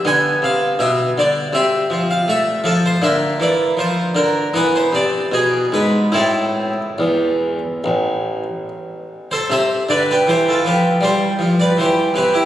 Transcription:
<<
  \new Staff \with { instrumentName = "Harpsichord" } { \time 4/4 \key a \minor \tempo 4 = 79 gis''8 f''8 e''8 d''8 e''8. f''16 e''8 a'16 c''16 | e''8 d''8 c''8 bes'8 b'16 c''16 d''8 gis'8 b'8 | a'2. r8. <a' c''>16 | \key c \major <c'' e''>8 <b' d''>16 <g' b'>16 <g' c''>16 <f' a'>16 <g' b'>8 <g' c''>8. <b' d''>16 <g' c''>8 <g' b'>16 <e' g'>16 | }
  \new Staff \with { instrumentName = "Harpsichord" } { \clef bass \time 4/4 \key a \minor << { b2 c'2 | bes2 b2 | r1 | \key c \major r1 | } \\ { d8 c8 b,8 d8 c8 f8 a8 f8 | d8 e8 f8 d8 e8 c8 b,8 gis,8 | <a, c' e'>4 e,4 a,,4 r4 | c8 d8 e8 f8 g8 f8 e8 c8 | } >> }
>>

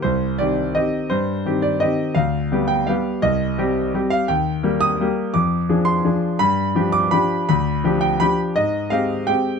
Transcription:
\new Staff \with { instrumentName = "Grand piano" } { \time 3/4 \key c \minor \tempo 4 = 169 << { c''4 d''4 ees''4 | c''4. d''8 ees''4 | f''4. g''8 f''4 | ees''2~ ees''8 f''8 |
\key g \phrygian g''4. ees'''4. | d'''4. c'''4. | b''4. d'''8 b''4 | b''4. g''8 b''8 r8 |
ees''4 f''4 g''4 | } \\ { c,4 <ees c' g'>4 <ees c' g'>4 | g,4 <ees c' g'>4 <ees c' g'>4 | d,4 <g b g'>4 <g b g'>4 | c,4 <g c' g'>4 <g c' g'>4 |
ees,4 <g bes g'>4 <g bes g'>4 | f,4 <f d' aes'>4 <f d' aes'>4 | g,4 <f d' g'>4 <f d' g'>4 | d,4 <f d' g'>4 <f d' g'>4 |
aes,4 <aes c' g'>4 <aes c' g'>4 | } >> }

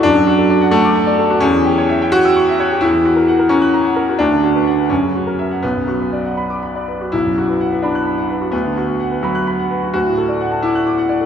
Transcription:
\new Staff \with { instrumentName = "Grand piano" } { \time 6/8 \key b \minor \tempo 4. = 86 << { fis,16 fis16 fis'16 a'16 d''16 fis''16 a''16 d'''16 a''16 d''16 a'16 fis'16 | e,16 e16 g'16 cis''16 e''16 g''16 cis'''16 e'''16 cis'''16 e''16 cis''16 g'16 | e,16 e16 fis'16 ais'16 fis''16 ais'16 ais''16 fis'''16 ais''16 fis''16 ais'16 fis'16 | d,16 d16 fis'16 b'16 fis''16 b'16 fis,16 cis16 fis'16 ais'16 e''16 fis''16 |
b,,16 fis,16 fis'16 b'16 d''16 fis''16 b''16 d'''16 b''16 d''16 b'16 fis'16 | b,,16 fis,16 fis'16 b'16 fis''16 b'16 b''16 fis'''16 b''16 fis''16 b'16 fis'16 | d,16 d16 fis'16 b'16 fis''16 b'16 b''16 fis'''16 b''16 fis''16 b'16 fis'16 | d,16 a,16 a'16 d''16 fis''16 a''16 d'''16 fis'''16 d'''16 fis''16 d''16 a'16 | } \\ { d'4. a4. | cis'4. fis'4. | e'4. cis'4. | d'4. cis'4. |
b4. r4. | e'4. d'4. | b4. fis4. | fis'4. e'4. | } >> }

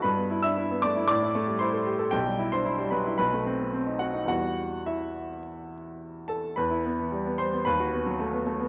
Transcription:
<<
  \new Staff \with { instrumentName = "Grand piano" } { \time 4/4 \key e \minor \tempo 4 = 111 <b' b''>8. <e'' e'''>8. <d'' d'''>8 <d'' d'''>4 <c'' c'''>4 | <g' g''>8. <c'' c'''>8. <b' b''>8 <b' b''>4. <fis' fis''>8 | <fis' fis''>4 <e' e''>2 r8 <a' a''>8 | <b' b''>4. <c'' c'''>8 <b' b''>2 | }
  \new Staff \with { instrumentName = "Grand piano" } { \time 4/4 \key e \minor g,16 b16 e'16 d'16 e'16 b16 a16 e'16 a,16 e'16 a16 g16 e'16 a'16 g'16 a'16 | b,,16 g16 e'16 d'16 e'16 g16 fis16 e'16 b,,16 a16 c'16 b16 c'16 dis'16 c'16 dis'16 | <e, e g b>1 | e,16 e'16 b16 e16 g16 b16 g16 b16 dis,16 fis'16 b16 fis16 a16 b16 a16 b16 | }
>>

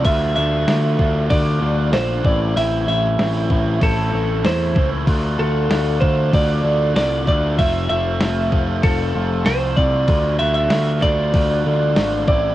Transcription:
<<
  \new Staff \with { instrumentName = "Clean electric guitar" } { \time 4/4 \key d \minor \tempo 4 = 96 e''8 e''4. d''4 c''8 d''8 | e''8 e''4. a'4 c''8. r16 | r8 a'4 c''8 d''4 d''8 d''8 | e''8 e''4. a'4 c''8 d''8~ |
d''8 e''16 e''8. d''2 d''8 | }
  \new Staff \with { instrumentName = "Overdriven electric guitar" } { \time 4/4 \key d \minor <d a d' f'>8 <d a d' f'>8 <d a d' f'>8 <d a d' f'>8 <d a d' f'>8 <d a d' f'>8 <d a d' f'>8 <a, e a c' e'>8 | <a, e a c' e'>8 <a, e a c' e'>8 <a, e a c' e'>8 <a, e a c' e'>8 <a, e a c' e'>8 <a, e a c' e'>8 <a, e a c' e'>8 <a, e a c' e'>8 | <d a d' f'>8 <d a d' f'>8 <d a d' f'>8 <d a d' f'>8 <d a d' f'>8 <d a d' f'>8 <d a d' f'>8 <d a d' f'>8 | <f, c f a c' f'>8 <f, c f a c' f'>8 <f, c f a c' f'>8 <f, c f a c' f'>8 <f, c f a c' f'>8 <f, c f a c' f'>8 <f, c f a c' f'>8 <f, c f a c' f'>8 |
<d a d' f'>8 <d a d' f'>8 <d a d' f'>8 <d a d' f'>8 <d a d' f'>8 <d a d' f'>8 <d a d' f'>8 <a, e a c' e'>8 | }
  \new Staff \with { instrumentName = "Overdriven electric guitar" } { \time 4/4 \key d \minor <d a d' f'>8 <d a d' f'>8 <d a d' f'>8 <d a d' f'>8 <d a d' f'>8 <d a d' f'>8 <d a d' f'>8 <a, e a c' e'>8 | <a, e a c' e'>8 <a, e a c' e'>8 <a, e a c' e'>8 <a, e a c' e'>8 <a, e a c' e'>8 <a, e a c' e'>8 <a, e a c' e'>8 <a, e a c' e'>8 | <d a d' f'>8 <d a d' f'>8 <d a d' f'>8 <d a d' f'>8 <d a d' f'>8 <d a d' f'>8 <d a d' f'>8 <d a d' f'>8 | <f a c' f'>8 <f a c' f'>8 <f a c' f'>8 <f a c' f'>8 <f a c' f'>8 <f a c' f'>8 <f a c' f'>8 <f a c' f'>8 |
<d a d' f'>8 <d a d' f'>8 <d a d' f'>8 <d a d' f'>8 <d a d' f'>8 <d a d' f'>8 <d a d' f'>8 <a, e a c' e'>8 | }
  \new Staff \with { instrumentName = "Picked electric bass" } { \clef bass \time 4/4 \key d \minor d,8 d,8 d,8 d,8 d,8 d,8 bes,,8 a,,8 | a,,8 a,,8 a,,8 a,,8 a,,8 a,,8 e,8 des,8 | d,8 d,8 d,8 d,8 d,8 d,8 c,8 d,8 | f,,8 f,,8 f,,8 f,,8 f,,8 f,,8 c,8 c,8 |
d,8 d,8 d,8 d,8 d,8 d,8 aes,,8 a,,8 | }
  \new DrumStaff \with { instrumentName = "Drums" } \drummode { \time 4/4 <hho bd>4 <hho sn>8 bd8 <hho bd>4 <hho sn>8 bd8 | hho4 <hho sn>8 bd8 <hho bd>4 <hho sn>8 bd8 | <hho bd>4 <hho sn>8 bd8 <hho bd>4 <hho sn>8 bd8 | <hho bd>4 <hho sn>8 bd8 <hho bd>4 <hho sn>8 bd8 |
<hho bd>4 <hho sn>8 bd8 <hho bd>4 <hho sn>8 bd8 | }
>>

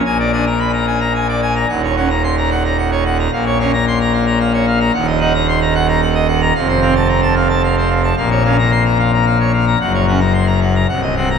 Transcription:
<<
  \new Staff \with { instrumentName = "Pipe organ" } { \time 3/4 \key bes \minor \tempo 4 = 111 aes''16 d''16 aes''16 bes''16 ces'''16 bes''16 aes''16 bes''16 aes''16 d''16 aes''16 bes''16 | ges''16 des''16 ges''16 bes''16 c'''16 bes''16 ges''16 bes''16 ges''16 des''16 ges''16 bes''16 | f''16 des''16 f''16 bes''16 c'''16 bes''16 f''16 bes''16 f''16 des''16 f''16 bes''16 | ges''16 ees''16 ges''16 bes''16 c'''16 bes''16 ges''16 bes''16 ges''16 ees''16 ges''16 bes''16 |
f''16 c''16 f''16 a''16 bes''16 a''16 f''16 a''16 f''16 c''16 f''16 a''16 | f''16 des''16 f''16 bes''16 c'''16 bes''16 f''16 bes''16 f''16 des''16 f''16 bes''16 | ges''16 des''16 ges''16 bes''16 c'''16 bes''16 ges''16 bes''16 ges''16 ees''16 ges''16 bes''16 | }
  \new Staff \with { instrumentName = "Pipe organ" } { \clef bass \time 3/4 \key bes \minor << { bes,8 d'16 r2 r16 | ees,8 des'16 r2 r16 | bes,8 des'16 r2 r16 | ees,8 ees'16 r2 r16 |
f,8 c'16 r2 r16 | bes,8 des'16 r2 r16 | ges,8 des'16 r4 r16 c,8 c'16 r16 | } \\ { bes,,2. | ees,,2. | bes,,2. | ees,,2. |
f,,2. | bes,,2. | ges,,2 c,,4 | } >> }
>>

